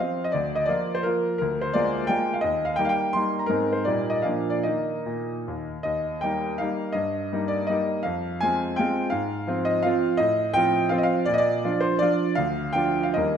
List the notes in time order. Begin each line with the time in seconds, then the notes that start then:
0.00 F3 C4 F4 F5
0.24 D#5
0.32 D2 D5
0.55 D#5
0.66 F3 A#3 F4 D5
0.95 C5
1.03 F3 A#3 F4 A#4
1.38 D2 A#4
1.61 C5
1.74 G#3 A#3 F4 D5
2.07 G#3 A#3 F4 G5
2.34 F5
2.41 D#2 D#5
2.65 F5
2.76 G3 A#3 D#4 G5
2.85 F5
2.89 G5
3.13 G3 A#3 D#4 C6
3.39 A#5
3.46 G#2 G#3 C4 D#4 A#4
3.73 C5
3.85 A#2 G3 A#3 D#4 D5
4.10 D#5
4.22 A#2 F3 A#3 D4 F5
4.50 D5
4.63 D#3 A#3 D#4 D#5
5.06 A#2
5.48 D#2
5.83 D#2 D#5
6.21 G3 A#3 D#4 G5
6.58 G3 A#3 D#4 F5
6.92 G2 D#5
7.33 G3 A#3 D#4
7.48 D5
7.67 G3 A#3 D#5
7.71 D#4
8.03 F2 F5
8.41 G#3 C4 F4 G#5
8.76 G#3 C4 F4 G5
9.10 G#2 F5
9.47 F3 C4 F4
9.65 D#5
9.83 F3 C4 F4 F5
10.17 A2 D#5
10.54 F3 C4 F4 G5
10.89 F3 C4 F4 F5
10.98 D#5
11.03 F5
11.25 A#2 D5
11.34 D#5
11.38 D5
11.64 F3 D4 F4
11.81 C5
11.99 F3 D4 F4 D5
12.35 D2 F5
12.73 F3 D4 F4 G5
13.03 F5
13.14 D#2 G3 A#3 A#4 D#5